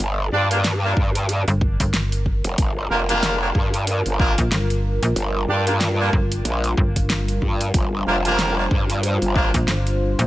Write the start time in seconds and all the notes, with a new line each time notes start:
Already playing: G3 D4 F4 A#4
0.00 G1, closed hi-hat
0.32 G2 D4 F4 G4 D5
0.51 A#3 D4 F4 G4 A#4, closed hi-hat
0.64 snare, closed hi-hat
0.83 A#3 D4 F4 G4 A#4
0.97 G2, kick
1.15 closed hi-hat
1.29 closed hi-hat
1.48 G1, closed hi-hat
1.61 kick
1.80 G1, kick, closed hi-hat
1.94 snare, closed hi-hat
2.12 closed hi-hat
2.26 kick
2.44 F1, closed hi-hat
2.58 G1, kick, closed hi-hat
2.90 F1 A#3 D4 F4 G4 A#4
3.09 A#3 D4 F4 G4 A#4, closed hi-hat
3.23 snare, closed hi-hat
3.41 A#3 D4 F4 G4 A#4
3.55 G2, kick
3.74 closed hi-hat
3.87 closed hi-hat
4.06 G1, closed hi-hat
4.19 A#3 D4 F4 G4 A#4, kick
4.38 A#1, kick, closed hi-hat
4.52 G1, snare, closed hi-hat
4.70 closed hi-hat
5.03 A#1, closed hi-hat
5.16 G1, closed hi-hat
5.48 G2 D4 F4 G4 D5
5.67 A#3 D4 F4 G4 A#4, closed hi-hat
5.81 snare, closed hi-hat
5.99 A#3 D4 F4 G4 A#4
6.13 G1, kick
6.32 closed hi-hat
6.45 A#1, closed hi-hat
6.64 closed hi-hat
6.77 G1, kick
6.96 kick, closed hi-hat
7.10 snare, closed hi-hat
7.28 closed hi-hat
7.42 G2, kick
7.61 closed hi-hat
7.74 G1 C5, kick, closed hi-hat
8.07 F1 A#3 D4 F4 G4 A#4
8.25 A#3 D4 F4 G4 A#4, closed hi-hat
8.39 snare, closed hi-hat
8.58 A#3 D4 F4 G4 A#4
8.71 G2, kick
8.90 closed hi-hat
9.03 closed hi-hat
9.22 G1, closed hi-hat
9.35 A#3 D4 F4 G4 A#4, kick
9.54 A#1, kick, closed hi-hat
9.68 G1, snare, closed hi-hat
9.87 closed hi-hat
10.19 A#1, closed hi-hat